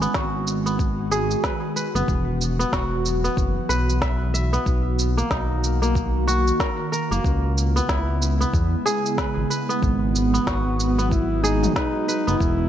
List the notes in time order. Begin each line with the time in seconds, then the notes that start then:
Already playing: D#3 G#3 C#4 E4 F#4
0.02 B3, shaker
0.14 G#1 F#4, kick, snare, shaker
0.47 shaker
0.66 B3, shaker
0.79 kick, shaker
1.11 G#4, shaker
1.31 shaker
1.44 B4, kick, snare, shaker
1.76 B4, shaker
1.95 F#1 B3, shaker
2.08 E1 E3 F#3, kick, shaker
2.41 shaker
2.59 B3, shaker
2.73 E1 F#4, kick, snare, shaker
3.06 shaker
3.24 B3, shaker
3.37 F#1, kick, shaker
3.69 B1 B4, shaker
3.89 shaker
4.01 E5, kick, snare, shaker
4.34 E5, shaker
4.53 B3, shaker
4.66 B1 D#3 A#3 F#4, kick, shaker
4.99 shaker
5.17 A#3, shaker
5.31 B1 D#4, kick, snare, shaker
5.64 shaker
5.82 A#3, shaker
5.95 kick, shaker
6.27 F#4, shaker
6.47 shaker
6.60 A#4, kick, snare, shaker
6.92 A#4, shaker
7.11 F#1 A#3, shaker
7.24 C#2 C#3 G#3 B3 E4, kick, shaker
7.58 shaker
7.76 B3, shaker
7.89 C#2 E4, kick, snare, shaker
8.22 shaker
8.41 B3, shaker
8.53 E2, kick, shaker
8.86 G#4, shaker
9.06 shaker
9.18 B4, kick, snare, shaker
9.37 G#1
9.50 B4, shaker
9.69 B3, shaker
9.82 G#1 F#3 B3 F#4, kick, shaker
10.16 shaker
10.34 B3, shaker
10.47 G#1 F#4, kick, snare, shaker
10.80 shaker
10.98 B3, shaker
11.11 E4, kick, shaker
11.43 D#4 G#4, shaker
11.63 mid tom, shaker
11.75 D#4 B4, kick, snare, shaker
12.08 B4, shaker
12.27 F#1 B3, shaker
12.40 E1 E3 F#3 B3 E4, kick, shaker